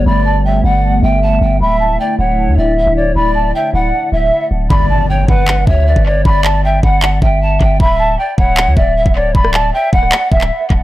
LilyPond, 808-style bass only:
\new Staff \with { instrumentName = "808-style bass" } { \clef bass \time 4/4 \key g \lydian \tempo 4 = 155 g,,4. g,,4 g,,4 g,,8 | d,,4 r8 d,,8. d,16 d,,8. d,,8. | d,,4 r8 d,,8 r8 d,,8 r8 d,,8 | g,,4. g,,4 d,8. g,,8. |
g,,4. g,,4 g,,4 g,,8 | d,,4 r8 d,,8. d,16 d,,8. d,,8. | d,,4 r8 d,,8 r8 d,,8 r8 d,,8 | }